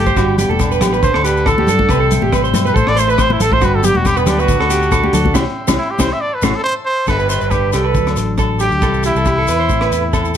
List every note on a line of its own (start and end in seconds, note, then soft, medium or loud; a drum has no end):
0.00 0.14 G1 medium
0.00 0.17 A2 medium
0.00 0.14 A3 medium
0.00 0.14 C4 soft
0.00 1.05 E4 medium
0.00 0.38 G4 medium
0.06 0.16 C5 medium
0.06 kick medium
0.06 high conga medium
0.06 shekere soft
0.16 0.47 G1 medium
0.16 1.01 G2 medium
0.16 0.37 F#4 medium
0.16 1.02 D5 medium
0.16 1.02 G5 medium
0.16 1.02 B5 medium
0.16 kick medium
0.16 cross-stick medium
0.16 low agogo medium
0.16 shekere medium
0.38 0.82 B3 medium
0.38 0.49 G4 medium
0.38 closed hi-hat medium
0.38 low conga medium
0.38 shekere medium
0.49 0.81 E1 medium
0.49 0.70 A4 medium
0.49 high conga medium
0.59 1.02 D4 medium
0.59 kick medium
0.59 cross-stick medium
0.59 low agogo medium
0.59 shekere medium
0.72 0.81 B4 medium
0.72 shekere soft
0.81 1.02 A1 medium
0.81 0.93 G4 medium
0.81 cross-stick medium
0.81 closed hi-hat medium
0.81 low conga medium
0.81 low agogo medium
0.81 shekere medium
0.85 1.02 B3 medium
0.93 1.13 B4 medium
0.93 shekere soft
1.03 1.13 D2 medium
1.03 1.47 D3 medium
1.03 1.23 C5 medium
1.03 1.89 D5 medium
1.03 1.89 F#5 medium
1.03 1.89 A5 medium
1.03 kick medium
1.03 shekere medium
1.14 1.64 D2 medium
1.14 1.24 A4 medium
1.14 cross-stick medium
1.14 low agogo medium
1.24 1.88 D4 medium
1.24 1.45 G4 medium
1.24 1.49 B4 medium
1.24 closed hi-hat medium
1.24 shekere medium
1.37 shekere soft
1.46 1.69 E3 medium
1.46 1.57 A4 medium
1.46 2.12 A4 medium
1.46 kick medium
1.46 cross-stick medium
1.46 low agogo medium
1.46 shekere medium
1.58 1.68 G4 medium
1.58 high conga medium
1.67 1.88 G2 medium
1.67 1.91 D3 medium
1.67 1.89 A4 medium
1.67 closed hi-hat medium
1.67 low conga medium
1.67 shekere medium
1.79 kick medium
1.79 high conga medium
1.89 2.20 C2 medium
1.89 2.32 C3 medium
1.89 2.00 B4 medium
1.89 3.61 E5 medium
1.89 2.75 G5 medium
1.89 3.61 C6 medium
1.89 kick medium
1.89 cross-stick medium
1.89 low agogo medium
1.89 shekere medium
1.94 2.76 E3 medium
1.94 2.13 G3 medium
1.94 2.76 C4 medium
1.94 4.52 E4 medium
2.00 2.21 A4 medium
2.11 2.78 G3 medium
2.11 closed hi-hat medium
2.11 low conga medium
2.11 shekere medium
2.22 2.54 A1 medium
2.22 2.32 G4 medium
2.22 high conga medium
2.32 2.55 C3 medium
2.32 2.44 B4 medium
2.32 kick medium
2.32 cross-stick medium
2.32 low agogo medium
2.32 shekere medium
2.44 2.65 C5 medium
2.44 shekere soft
2.54 2.74 G2 loud
2.54 2.77 B2 medium
2.54 closed hi-hat soft
2.54 high conga medium
2.54 low conga medium
2.54 low agogo medium
2.54 shekere medium
2.65 2.74 B4 medium
2.65 2.77 B4 medium
2.65 shekere soft
2.74 2.87 A1 medium
2.74 3.63 A2 medium
2.74 2.96 A4 medium
2.74 2.90 C5 medium
2.74 3.62 A5 medium
2.74 kick medium
2.74 shekere medium
2.87 3.37 A1 medium
2.87 3.01 D5 medium
2.87 cross-stick medium
2.87 low agogo medium
2.96 3.40 A3 medium
2.96 3.08 C5 medium
2.96 3.12 C5 medium
2.96 closed hi-hat medium
2.96 shekere medium
3.08 3.18 B4 medium
3.08 3.24 B4 medium
3.08 shekere soft
3.18 3.61 C4 medium
3.18 3.39 C5 medium
3.18 kick medium
3.18 cross-stick medium
3.18 low agogo medium
3.18 shekere medium
3.22 3.34 C5 medium
3.30 3.43 E4 medium
3.30 high conga medium
3.40 3.61 A1 medium
3.40 3.60 A3 medium
3.40 3.52 A4 medium
3.40 3.55 A4 medium
3.40 closed hi-hat medium
3.40 low conga medium
3.40 shekere medium
3.52 3.62 C5 medium
3.52 3.66 C5 medium
3.52 kick medium
3.52 high conga medium
3.61 3.93 G1 loud
3.61 4.46 G2 medium
3.61 3.83 F#4 loud
3.61 3.77 B4 medium
3.61 5.34 D5 medium
3.61 4.49 G5 medium
3.61 4.49 B5 medium
3.61 kick medium
3.61 cross-stick medium
3.61 low agogo medium
3.61 shekere medium
3.75 3.87 A4 medium
3.83 4.27 B3 medium
3.83 3.95 G4 medium
3.83 3.98 G4 medium
3.83 closed hi-hat soft
3.83 low conga medium
3.83 shekere medium
3.94 4.26 E1 medium
3.94 4.08 F#4 medium
3.94 muted clean electric guitar stroke medium
3.94 high conga medium
4.05 4.47 D4 medium
4.05 4.20 G4 loud
4.05 kick medium
4.05 cross-stick medium
4.05 low agogo medium
4.05 shekere medium
4.17 4.30 B3 medium
4.17 4.27 B4 medium
4.17 shekere soft
4.26 4.47 D2 loud
4.26 4.47 B3 medium
4.26 4.42 D4 medium
4.26 4.38 G4 medium
4.26 cross-stick medium
4.26 closed hi-hat medium
4.26 high conga medium
4.26 low conga medium
4.26 low agogo medium
4.26 shekere medium
4.38 5.48 F#4 medium
4.38 4.59 B4 medium
4.38 shekere soft
4.47 4.59 D2 medium
4.47 4.91 D3 medium
4.47 5.34 F#5 medium
4.47 5.34 A5 medium
4.47 kick medium
4.47 shekere loud
4.59 5.10 D2 medium
4.59 4.70 A4 medium
4.59 cross-stick medium
4.59 low agogo medium
4.70 4.83 B3 medium
4.70 4.91 G4 medium
4.70 closed hi-hat medium
4.70 shekere medium
4.82 5.36 D4 soft
4.82 shekere soft
4.91 5.03 A4 medium
4.91 muted clean electric guitar stroke medium
4.91 kick medium
4.91 cross-stick medium
4.91 low agogo medium
4.91 shekere medium
5.04 5.13 G4 medium
5.04 high conga medium
5.13 5.34 D2 medium
5.13 5.35 D3 medium
5.13 5.34 A4 medium
5.13 closed hi-hat medium
5.13 low conga medium
5.13 shekere medium
5.25 kick medium
5.25 high conga medium
5.34 5.44 C2 loud
5.34 5.43 E3 loud
5.34 5.43 G3 loud
5.34 5.43 C4 medium
5.34 5.42 E4 medium
5.34 5.42 G4 medium
5.34 5.42 C5 medium
5.34 7.07 E5 medium
5.34 6.21 G5 medium
5.34 7.07 C6 medium
5.34 kick medium
5.34 snare medium
5.34 high conga loud
5.34 low agogo loud
5.34 shekere medium
5.68 5.76 C2 medium
5.68 5.76 E3 loud
5.68 5.75 G3 loud
5.68 5.75 C4 medium
5.68 5.75 E4 medium
5.68 5.75 G4 medium
5.68 5.75 C5 medium
5.68 kick medium
5.68 snare medium
5.68 high conga loud
5.68 low agogo loud
5.68 shekere loud
5.79 5.92 E4 medium
5.91 6.02 G4 medium
5.99 6.09 C2 loud
5.99 6.08 E3 medium
5.99 6.08 G3 medium
5.99 6.08 C4 loud
5.99 6.08 E4 medium
5.99 6.08 G4 loud
5.99 6.07 C5 loud
5.99 6.14 C5 medium
5.99 kick medium
5.99 snare medium
5.99 high conga medium
5.99 low agogo loud
5.99 shekere loud
6.13 6.22 E5 medium
6.21 6.36 D5 medium
6.21 7.08 A5 medium
6.34 6.46 B4 medium
6.42 6.52 A1 loud
6.42 6.52 C3 medium
6.42 6.51 E3 medium
6.42 6.51 A3 medium
6.42 6.51 E4 medium
6.42 6.57 F#4 medium
6.42 6.51 A4 loud
6.42 6.51 C5 loud
6.42 kick medium
6.42 snare medium
6.42 high conga loud
6.42 low agogo loud
6.42 shekere loud
6.56 6.63 A4 medium
6.64 6.74 C5 loud
6.85 7.06 C5 loud
7.07 7.39 G1 medium
7.07 7.93 G2 medium
7.07 7.73 D3 soft
7.07 7.31 B3 soft
7.07 7.19 A4 medium
7.07 7.29 B4 medium
7.07 kick medium
7.07 cross-stick medium
7.07 crash medium
7.07 low agogo medium
7.07 shekere medium
7.11 7.53 D4 soft
7.11 7.95 G4 medium
7.19 7.29 B4 medium
7.19 shekere soft
7.29 7.53 B4 medium
7.29 7.41 C5 medium
7.29 closed hi-hat soft
7.29 shekere medium
7.41 7.72 G1 medium
7.41 7.49 B4 medium
7.41 shekere soft
7.51 7.94 D4 medium
7.51 7.73 G4 medium
7.51 7.72 B4 medium
7.51 kick medium
7.51 cross-stick medium
7.51 low agogo medium
7.51 shekere medium
7.73 7.93 C2 medium
7.73 7.96 D3 medium
7.73 7.85 G4 medium
7.73 8.35 A4 medium
7.73 cross-stick medium
7.73 closed hi-hat soft
7.73 low agogo medium
7.73 shekere medium
7.85 8.06 B4 medium
7.94 8.15 D2 medium
7.94 8.82 D3 medium
7.94 8.62 F#3 medium
7.94 kick medium
7.94 shekere medium
7.99 8.18 D4 medium
8.07 cross-stick medium
8.07 low agogo medium
8.07 shekere soft
8.16 8.69 A1 medium
8.16 8.82 D4 soft
8.16 muted clean electric guitar stroke medium
8.16 closed hi-hat soft
8.16 shekere medium
8.38 8.60 A4 medium
8.38 kick medium
8.38 cross-stick medium
8.38 low agogo medium
8.38 shekere medium
8.43 8.82 A4 medium
8.59 8.82 F#3 medium
8.59 9.01 G4 medium
8.59 8.72 G4 medium
8.59 closed hi-hat soft
8.59 shekere medium
8.71 8.81 D2 medium
8.71 shekere soft
8.82 9.14 C2 medium
8.82 9.50 C3 medium
8.82 9.04 A4 medium
8.82 kick medium
8.82 cross-stick medium
8.82 low agogo medium
8.82 shekere medium
8.86 9.49 E3 soft
8.86 9.07 G3 soft
8.86 9.70 E4 soft
8.94 shekere soft
9.03 10.32 E4 medium
9.03 9.16 G4 medium
9.03 closed hi-hat soft
9.03 shekere soft
9.08 9.28 G3 soft
9.15 9.46 C2 medium
9.15 9.27 A4 medium
9.15 shekere soft
9.25 9.38 G4 medium
9.25 kick medium
9.25 cross-stick medium
9.25 low agogo medium
9.25 shekere medium
9.30 muted clean electric guitar stroke medium
9.38 9.48 A4 medium
9.48 9.68 E2 medium
9.48 9.69 E3 soft
9.48 9.59 B4 medium
9.48 closed hi-hat soft
9.48 low agogo medium
9.48 shekere medium
9.60 9.81 C5 medium
9.69 9.90 A1 medium
9.69 10.37 A2 medium
9.69 10.15 C4 soft
9.69 kick medium
9.69 shekere medium
9.81 10.03 B4 medium
9.81 cross-stick medium
9.81 low agogo medium
9.81 shekere soft
9.91 10.37 E2 medium
9.91 10.37 A3 soft
9.91 closed hi-hat soft
9.91 shekere medium
10.13 10.37 C4 soft
10.13 10.34 A4 medium
10.13 kick medium
10.13 cross-stick medium
10.13 low agogo medium
10.13 shekere medium
10.25 shekere soft